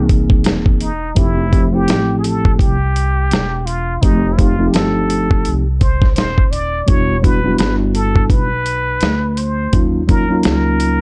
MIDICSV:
0, 0, Header, 1, 5, 480
1, 0, Start_track
1, 0, Tempo, 714286
1, 784, Time_signature, 4, 2, 24, 8
1, 7399, End_track
2, 0, Start_track
2, 0, Title_t, "Muted trumpet"
2, 0, Program_c, 0, 59
2, 551, Note_on_c, 0, 63, 83
2, 793, Note_on_c, 0, 64, 96
2, 803, Note_off_c, 0, 63, 0
2, 1167, Note_on_c, 0, 67, 91
2, 1177, Note_off_c, 0, 64, 0
2, 1465, Note_off_c, 0, 67, 0
2, 1469, Note_on_c, 0, 68, 66
2, 1500, Note_on_c, 0, 69, 85
2, 1510, Note_off_c, 0, 68, 0
2, 1738, Note_on_c, 0, 67, 97
2, 1748, Note_off_c, 0, 69, 0
2, 2457, Note_on_c, 0, 65, 83
2, 2467, Note_off_c, 0, 67, 0
2, 2697, Note_on_c, 0, 63, 96
2, 2707, Note_off_c, 0, 65, 0
2, 2909, Note_on_c, 0, 64, 62
2, 2919, Note_off_c, 0, 63, 0
2, 2938, Note_on_c, 0, 65, 86
2, 2948, Note_off_c, 0, 64, 0
2, 3177, Note_on_c, 0, 69, 98
2, 3187, Note_off_c, 0, 65, 0
2, 3730, Note_off_c, 0, 69, 0
2, 3901, Note_on_c, 0, 72, 85
2, 4126, Note_off_c, 0, 72, 0
2, 4135, Note_on_c, 0, 72, 103
2, 4377, Note_on_c, 0, 74, 98
2, 4388, Note_off_c, 0, 72, 0
2, 4619, Note_on_c, 0, 73, 109
2, 4629, Note_off_c, 0, 74, 0
2, 4864, Note_on_c, 0, 71, 101
2, 4874, Note_off_c, 0, 73, 0
2, 5098, Note_off_c, 0, 71, 0
2, 5102, Note_on_c, 0, 71, 103
2, 5209, Note_off_c, 0, 71, 0
2, 5341, Note_on_c, 0, 69, 95
2, 5584, Note_on_c, 0, 71, 108
2, 5594, Note_off_c, 0, 69, 0
2, 6270, Note_off_c, 0, 71, 0
2, 6270, Note_on_c, 0, 71, 70
2, 6303, Note_on_c, 0, 72, 96
2, 6313, Note_off_c, 0, 71, 0
2, 6613, Note_off_c, 0, 72, 0
2, 6783, Note_on_c, 0, 70, 97
2, 7007, Note_off_c, 0, 70, 0
2, 7023, Note_on_c, 0, 70, 94
2, 7399, Note_off_c, 0, 70, 0
2, 7399, End_track
3, 0, Start_track
3, 0, Title_t, "Tine electric piano"
3, 0, Program_c, 1, 4
3, 0, Note_on_c, 1, 52, 73
3, 0, Note_on_c, 1, 58, 70
3, 0, Note_on_c, 1, 60, 66
3, 0, Note_on_c, 1, 63, 66
3, 0, Note_on_c, 1, 68, 83
3, 596, Note_off_c, 1, 52, 0
3, 599, Note_off_c, 1, 58, 0
3, 602, Note_off_c, 1, 60, 0
3, 605, Note_off_c, 1, 63, 0
3, 609, Note_off_c, 1, 68, 0
3, 774, Note_on_c, 1, 53, 73
3, 777, Note_on_c, 1, 57, 63
3, 785, Note_on_c, 1, 60, 61
3, 790, Note_on_c, 1, 64, 67
3, 798, Note_on_c, 1, 67, 79
3, 964, Note_off_c, 1, 53, 0
3, 966, Note_off_c, 1, 57, 0
3, 970, Note_off_c, 1, 60, 0
3, 972, Note_off_c, 1, 64, 0
3, 977, Note_off_c, 1, 67, 0
3, 1014, Note_on_c, 1, 53, 73
3, 1018, Note_on_c, 1, 57, 66
3, 1025, Note_on_c, 1, 60, 65
3, 1032, Note_on_c, 1, 64, 63
3, 1036, Note_on_c, 1, 67, 77
3, 1121, Note_off_c, 1, 53, 0
3, 1124, Note_off_c, 1, 57, 0
3, 1127, Note_off_c, 1, 60, 0
3, 1130, Note_off_c, 1, 64, 0
3, 1133, Note_off_c, 1, 67, 0
3, 1155, Note_on_c, 1, 53, 69
3, 1162, Note_on_c, 1, 57, 67
3, 1167, Note_on_c, 1, 60, 62
3, 1175, Note_on_c, 1, 64, 69
3, 1179, Note_on_c, 1, 67, 77
3, 1850, Note_off_c, 1, 53, 0
3, 1854, Note_off_c, 1, 57, 0
3, 1856, Note_off_c, 1, 60, 0
3, 1860, Note_off_c, 1, 64, 0
3, 1862, Note_off_c, 1, 67, 0
3, 2697, Note_on_c, 1, 53, 67
3, 2703, Note_on_c, 1, 57, 63
3, 2709, Note_on_c, 1, 60, 65
3, 2715, Note_on_c, 1, 63, 62
3, 2721, Note_on_c, 1, 67, 77
3, 2886, Note_off_c, 1, 53, 0
3, 2889, Note_off_c, 1, 57, 0
3, 2892, Note_off_c, 1, 60, 0
3, 2895, Note_off_c, 1, 63, 0
3, 2898, Note_off_c, 1, 67, 0
3, 2937, Note_on_c, 1, 53, 71
3, 2941, Note_on_c, 1, 57, 63
3, 2945, Note_on_c, 1, 60, 65
3, 2953, Note_on_c, 1, 63, 63
3, 2959, Note_on_c, 1, 67, 73
3, 3043, Note_off_c, 1, 53, 0
3, 3045, Note_off_c, 1, 57, 0
3, 3047, Note_off_c, 1, 60, 0
3, 3051, Note_off_c, 1, 63, 0
3, 3054, Note_off_c, 1, 67, 0
3, 3076, Note_on_c, 1, 53, 75
3, 3082, Note_on_c, 1, 57, 65
3, 3087, Note_on_c, 1, 60, 62
3, 3092, Note_on_c, 1, 63, 66
3, 3099, Note_on_c, 1, 65, 64
3, 3128, Note_off_c, 1, 65, 0
3, 3142, Note_on_c, 1, 67, 79
3, 3771, Note_off_c, 1, 53, 0
3, 3774, Note_off_c, 1, 57, 0
3, 3776, Note_off_c, 1, 60, 0
3, 3779, Note_off_c, 1, 63, 0
3, 3804, Note_off_c, 1, 67, 0
3, 4613, Note_on_c, 1, 55, 73
3, 4620, Note_on_c, 1, 59, 59
3, 4626, Note_on_c, 1, 62, 66
3, 4632, Note_on_c, 1, 64, 64
3, 4638, Note_on_c, 1, 66, 73
3, 4804, Note_off_c, 1, 55, 0
3, 4808, Note_off_c, 1, 59, 0
3, 4810, Note_off_c, 1, 62, 0
3, 4814, Note_off_c, 1, 64, 0
3, 4817, Note_off_c, 1, 66, 0
3, 4849, Note_on_c, 1, 55, 66
3, 4855, Note_on_c, 1, 59, 63
3, 4861, Note_on_c, 1, 62, 64
3, 4867, Note_on_c, 1, 64, 63
3, 4871, Note_on_c, 1, 66, 76
3, 4959, Note_off_c, 1, 55, 0
3, 4962, Note_off_c, 1, 59, 0
3, 4965, Note_off_c, 1, 62, 0
3, 4968, Note_off_c, 1, 64, 0
3, 4970, Note_off_c, 1, 66, 0
3, 4993, Note_on_c, 1, 54, 57
3, 5002, Note_on_c, 1, 59, 67
3, 5007, Note_on_c, 1, 62, 68
3, 5010, Note_on_c, 1, 64, 63
3, 5019, Note_on_c, 1, 66, 78
3, 5035, Note_off_c, 1, 54, 0
3, 5036, Note_on_c, 1, 55, 69
3, 5694, Note_off_c, 1, 59, 0
3, 5696, Note_off_c, 1, 62, 0
3, 5698, Note_off_c, 1, 64, 0
3, 5702, Note_off_c, 1, 66, 0
3, 5711, Note_off_c, 1, 55, 0
3, 6532, Note_on_c, 1, 54, 65
3, 6538, Note_on_c, 1, 58, 64
3, 6543, Note_on_c, 1, 61, 64
3, 6550, Note_on_c, 1, 63, 64
3, 6555, Note_on_c, 1, 65, 77
3, 6724, Note_off_c, 1, 54, 0
3, 6726, Note_off_c, 1, 58, 0
3, 6729, Note_off_c, 1, 61, 0
3, 6733, Note_off_c, 1, 63, 0
3, 6735, Note_off_c, 1, 65, 0
3, 6771, Note_on_c, 1, 54, 73
3, 6776, Note_on_c, 1, 58, 62
3, 6783, Note_on_c, 1, 61, 62
3, 6790, Note_on_c, 1, 63, 66
3, 6795, Note_on_c, 1, 65, 77
3, 6880, Note_off_c, 1, 54, 0
3, 6882, Note_off_c, 1, 58, 0
3, 6886, Note_off_c, 1, 61, 0
3, 6889, Note_off_c, 1, 63, 0
3, 6892, Note_off_c, 1, 65, 0
3, 6911, Note_on_c, 1, 54, 71
3, 6917, Note_on_c, 1, 58, 64
3, 6923, Note_on_c, 1, 61, 66
3, 6928, Note_on_c, 1, 63, 68
3, 6934, Note_on_c, 1, 65, 78
3, 7399, Note_off_c, 1, 54, 0
3, 7399, Note_off_c, 1, 58, 0
3, 7399, Note_off_c, 1, 61, 0
3, 7399, Note_off_c, 1, 63, 0
3, 7399, Note_off_c, 1, 65, 0
3, 7399, End_track
4, 0, Start_track
4, 0, Title_t, "Upright bass"
4, 0, Program_c, 2, 32
4, 0, Note_on_c, 2, 36, 97
4, 279, Note_off_c, 2, 36, 0
4, 300, Note_on_c, 2, 28, 91
4, 758, Note_off_c, 2, 28, 0
4, 782, Note_on_c, 2, 29, 99
4, 1239, Note_off_c, 2, 29, 0
4, 1262, Note_on_c, 2, 33, 89
4, 1719, Note_off_c, 2, 33, 0
4, 1745, Note_on_c, 2, 36, 96
4, 2201, Note_off_c, 2, 36, 0
4, 2229, Note_on_c, 2, 28, 95
4, 2683, Note_off_c, 2, 28, 0
4, 2709, Note_on_c, 2, 29, 96
4, 3163, Note_off_c, 2, 29, 0
4, 3187, Note_on_c, 2, 31, 86
4, 3642, Note_off_c, 2, 31, 0
4, 3670, Note_on_c, 2, 36, 80
4, 4123, Note_off_c, 2, 36, 0
4, 4148, Note_on_c, 2, 27, 81
4, 4602, Note_off_c, 2, 27, 0
4, 4624, Note_on_c, 2, 28, 99
4, 5080, Note_off_c, 2, 28, 0
4, 5101, Note_on_c, 2, 31, 86
4, 5559, Note_off_c, 2, 31, 0
4, 5576, Note_on_c, 2, 35, 81
4, 6036, Note_off_c, 2, 35, 0
4, 6060, Note_on_c, 2, 38, 85
4, 6518, Note_off_c, 2, 38, 0
4, 6539, Note_on_c, 2, 39, 95
4, 6998, Note_off_c, 2, 39, 0
4, 7024, Note_on_c, 2, 37, 89
4, 7399, Note_off_c, 2, 37, 0
4, 7399, End_track
5, 0, Start_track
5, 0, Title_t, "Drums"
5, 63, Note_on_c, 9, 42, 69
5, 64, Note_on_c, 9, 36, 86
5, 130, Note_off_c, 9, 42, 0
5, 131, Note_off_c, 9, 36, 0
5, 200, Note_on_c, 9, 36, 90
5, 267, Note_off_c, 9, 36, 0
5, 297, Note_on_c, 9, 42, 78
5, 312, Note_on_c, 9, 38, 115
5, 365, Note_off_c, 9, 42, 0
5, 379, Note_off_c, 9, 38, 0
5, 442, Note_on_c, 9, 36, 97
5, 509, Note_off_c, 9, 36, 0
5, 541, Note_on_c, 9, 42, 74
5, 608, Note_off_c, 9, 42, 0
5, 781, Note_on_c, 9, 42, 89
5, 784, Note_on_c, 9, 36, 105
5, 848, Note_off_c, 9, 42, 0
5, 851, Note_off_c, 9, 36, 0
5, 1026, Note_on_c, 9, 36, 89
5, 1027, Note_on_c, 9, 42, 72
5, 1093, Note_off_c, 9, 36, 0
5, 1094, Note_off_c, 9, 42, 0
5, 1263, Note_on_c, 9, 42, 82
5, 1277, Note_on_c, 9, 38, 113
5, 1330, Note_off_c, 9, 42, 0
5, 1344, Note_off_c, 9, 38, 0
5, 1507, Note_on_c, 9, 42, 76
5, 1574, Note_off_c, 9, 42, 0
5, 1647, Note_on_c, 9, 36, 79
5, 1714, Note_off_c, 9, 36, 0
5, 1742, Note_on_c, 9, 36, 99
5, 1751, Note_on_c, 9, 42, 78
5, 1810, Note_off_c, 9, 36, 0
5, 1818, Note_off_c, 9, 42, 0
5, 1989, Note_on_c, 9, 42, 72
5, 2057, Note_off_c, 9, 42, 0
5, 2226, Note_on_c, 9, 42, 77
5, 2241, Note_on_c, 9, 38, 109
5, 2294, Note_off_c, 9, 42, 0
5, 2308, Note_off_c, 9, 38, 0
5, 2467, Note_on_c, 9, 42, 68
5, 2535, Note_off_c, 9, 42, 0
5, 2706, Note_on_c, 9, 42, 90
5, 2707, Note_on_c, 9, 36, 108
5, 2773, Note_off_c, 9, 42, 0
5, 2775, Note_off_c, 9, 36, 0
5, 2947, Note_on_c, 9, 42, 73
5, 2948, Note_on_c, 9, 36, 79
5, 3015, Note_off_c, 9, 36, 0
5, 3015, Note_off_c, 9, 42, 0
5, 3183, Note_on_c, 9, 42, 82
5, 3197, Note_on_c, 9, 38, 109
5, 3251, Note_off_c, 9, 42, 0
5, 3264, Note_off_c, 9, 38, 0
5, 3427, Note_on_c, 9, 42, 78
5, 3494, Note_off_c, 9, 42, 0
5, 3567, Note_on_c, 9, 36, 81
5, 3634, Note_off_c, 9, 36, 0
5, 3662, Note_on_c, 9, 42, 81
5, 3729, Note_off_c, 9, 42, 0
5, 3904, Note_on_c, 9, 42, 67
5, 3906, Note_on_c, 9, 36, 85
5, 3971, Note_off_c, 9, 42, 0
5, 3973, Note_off_c, 9, 36, 0
5, 4043, Note_on_c, 9, 36, 91
5, 4055, Note_on_c, 9, 38, 32
5, 4110, Note_off_c, 9, 36, 0
5, 4123, Note_off_c, 9, 38, 0
5, 4140, Note_on_c, 9, 42, 78
5, 4154, Note_on_c, 9, 38, 113
5, 4207, Note_off_c, 9, 42, 0
5, 4222, Note_off_c, 9, 38, 0
5, 4286, Note_on_c, 9, 36, 94
5, 4353, Note_off_c, 9, 36, 0
5, 4386, Note_on_c, 9, 42, 71
5, 4453, Note_off_c, 9, 42, 0
5, 4621, Note_on_c, 9, 42, 87
5, 4625, Note_on_c, 9, 36, 110
5, 4689, Note_off_c, 9, 42, 0
5, 4693, Note_off_c, 9, 36, 0
5, 4866, Note_on_c, 9, 36, 83
5, 4868, Note_on_c, 9, 42, 72
5, 4933, Note_off_c, 9, 36, 0
5, 4935, Note_off_c, 9, 42, 0
5, 5097, Note_on_c, 9, 42, 82
5, 5110, Note_on_c, 9, 38, 114
5, 5164, Note_off_c, 9, 42, 0
5, 5178, Note_off_c, 9, 38, 0
5, 5341, Note_on_c, 9, 42, 78
5, 5408, Note_off_c, 9, 42, 0
5, 5481, Note_on_c, 9, 36, 73
5, 5548, Note_off_c, 9, 36, 0
5, 5575, Note_on_c, 9, 36, 92
5, 5578, Note_on_c, 9, 42, 83
5, 5643, Note_off_c, 9, 36, 0
5, 5645, Note_off_c, 9, 42, 0
5, 5818, Note_on_c, 9, 42, 69
5, 5885, Note_off_c, 9, 42, 0
5, 6052, Note_on_c, 9, 42, 74
5, 6067, Note_on_c, 9, 38, 115
5, 6119, Note_off_c, 9, 42, 0
5, 6134, Note_off_c, 9, 38, 0
5, 6298, Note_on_c, 9, 42, 67
5, 6365, Note_off_c, 9, 42, 0
5, 6538, Note_on_c, 9, 42, 93
5, 6540, Note_on_c, 9, 36, 103
5, 6605, Note_off_c, 9, 42, 0
5, 6607, Note_off_c, 9, 36, 0
5, 6779, Note_on_c, 9, 42, 69
5, 6780, Note_on_c, 9, 36, 84
5, 6846, Note_off_c, 9, 42, 0
5, 6847, Note_off_c, 9, 36, 0
5, 7011, Note_on_c, 9, 42, 84
5, 7025, Note_on_c, 9, 38, 115
5, 7078, Note_off_c, 9, 42, 0
5, 7092, Note_off_c, 9, 38, 0
5, 7257, Note_on_c, 9, 42, 77
5, 7324, Note_off_c, 9, 42, 0
5, 7399, End_track
0, 0, End_of_file